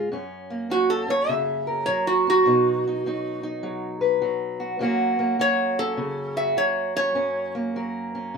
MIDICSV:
0, 0, Header, 1, 3, 480
1, 0, Start_track
1, 0, Tempo, 587659
1, 82, Time_signature, 4, 2, 24, 8
1, 6841, End_track
2, 0, Start_track
2, 0, Title_t, "Resonator guitar played with a steel bar"
2, 0, Program_c, 0, 25
2, 583, Note_on_c, 0, 66, 88
2, 729, Note_off_c, 0, 66, 0
2, 734, Note_on_c, 0, 69, 78
2, 885, Note_off_c, 0, 69, 0
2, 901, Note_on_c, 0, 73, 76
2, 1050, Note_off_c, 0, 73, 0
2, 1050, Note_on_c, 0, 76, 69
2, 1514, Note_off_c, 0, 76, 0
2, 1517, Note_on_c, 0, 73, 80
2, 1677, Note_off_c, 0, 73, 0
2, 1693, Note_on_c, 0, 66, 78
2, 1845, Note_off_c, 0, 66, 0
2, 1877, Note_on_c, 0, 66, 83
2, 2795, Note_off_c, 0, 66, 0
2, 4419, Note_on_c, 0, 73, 102
2, 4718, Note_off_c, 0, 73, 0
2, 4729, Note_on_c, 0, 69, 76
2, 5191, Note_off_c, 0, 69, 0
2, 5202, Note_on_c, 0, 76, 82
2, 5363, Note_off_c, 0, 76, 0
2, 5372, Note_on_c, 0, 73, 84
2, 5673, Note_off_c, 0, 73, 0
2, 5689, Note_on_c, 0, 73, 96
2, 6150, Note_off_c, 0, 73, 0
2, 6841, End_track
3, 0, Start_track
3, 0, Title_t, "Steel-string acoustic guitar"
3, 0, Program_c, 1, 25
3, 0, Note_on_c, 1, 49, 74
3, 91, Note_off_c, 1, 49, 0
3, 95, Note_on_c, 1, 42, 71
3, 107, Note_on_c, 1, 61, 62
3, 411, Note_on_c, 1, 58, 52
3, 563, Note_off_c, 1, 61, 0
3, 572, Note_on_c, 1, 54, 57
3, 575, Note_on_c, 1, 61, 56
3, 874, Note_off_c, 1, 61, 0
3, 883, Note_on_c, 1, 61, 56
3, 1051, Note_on_c, 1, 49, 62
3, 1364, Note_on_c, 1, 70, 63
3, 1529, Note_off_c, 1, 49, 0
3, 1533, Note_off_c, 1, 54, 0
3, 1537, Note_on_c, 1, 54, 64
3, 1843, Note_off_c, 1, 61, 0
3, 1854, Note_on_c, 1, 61, 59
3, 1990, Note_off_c, 1, 70, 0
3, 2002, Note_off_c, 1, 42, 0
3, 2005, Note_on_c, 1, 47, 74
3, 2014, Note_off_c, 1, 58, 0
3, 2014, Note_off_c, 1, 61, 0
3, 2017, Note_on_c, 1, 63, 65
3, 2326, Note_off_c, 1, 63, 0
3, 2348, Note_on_c, 1, 63, 54
3, 2498, Note_off_c, 1, 54, 0
3, 2499, Note_off_c, 1, 63, 0
3, 2502, Note_on_c, 1, 54, 64
3, 2509, Note_on_c, 1, 63, 57
3, 2795, Note_off_c, 1, 63, 0
3, 2805, Note_on_c, 1, 63, 61
3, 2965, Note_off_c, 1, 54, 0
3, 2965, Note_on_c, 1, 54, 67
3, 3275, Note_on_c, 1, 71, 67
3, 3444, Note_off_c, 1, 54, 0
3, 3444, Note_on_c, 1, 54, 61
3, 3756, Note_on_c, 1, 66, 60
3, 3905, Note_off_c, 1, 71, 0
3, 3908, Note_off_c, 1, 47, 0
3, 3910, Note_off_c, 1, 63, 0
3, 3913, Note_on_c, 1, 42, 76
3, 3922, Note_off_c, 1, 54, 0
3, 3925, Note_on_c, 1, 54, 66
3, 3930, Note_off_c, 1, 66, 0
3, 3930, Note_on_c, 1, 58, 66
3, 3933, Note_on_c, 1, 61, 62
3, 3945, Note_on_c, 1, 66, 70
3, 4235, Note_off_c, 1, 58, 0
3, 4238, Note_on_c, 1, 58, 57
3, 4402, Note_off_c, 1, 54, 0
3, 4404, Note_off_c, 1, 66, 0
3, 4406, Note_on_c, 1, 54, 59
3, 4407, Note_on_c, 1, 66, 65
3, 4730, Note_off_c, 1, 61, 0
3, 4734, Note_on_c, 1, 61, 58
3, 4878, Note_on_c, 1, 49, 64
3, 5195, Note_off_c, 1, 66, 0
3, 5198, Note_on_c, 1, 66, 66
3, 5361, Note_off_c, 1, 54, 0
3, 5362, Note_off_c, 1, 49, 0
3, 5364, Note_on_c, 1, 54, 65
3, 5675, Note_off_c, 1, 61, 0
3, 5685, Note_on_c, 1, 61, 62
3, 5830, Note_off_c, 1, 42, 0
3, 5832, Note_off_c, 1, 61, 0
3, 5840, Note_on_c, 1, 42, 77
3, 5843, Note_on_c, 1, 61, 64
3, 6157, Note_off_c, 1, 58, 0
3, 6166, Note_on_c, 1, 58, 55
3, 6334, Note_off_c, 1, 54, 0
3, 6337, Note_off_c, 1, 66, 0
3, 6337, Note_on_c, 1, 54, 61
3, 6340, Note_on_c, 1, 70, 62
3, 6636, Note_off_c, 1, 61, 0
3, 6655, Note_on_c, 1, 61, 57
3, 6814, Note_on_c, 1, 49, 61
3, 6841, Note_off_c, 1, 42, 0
3, 6841, Note_off_c, 1, 49, 0
3, 6841, Note_off_c, 1, 54, 0
3, 6841, Note_off_c, 1, 58, 0
3, 6841, Note_off_c, 1, 61, 0
3, 6841, Note_off_c, 1, 70, 0
3, 6841, End_track
0, 0, End_of_file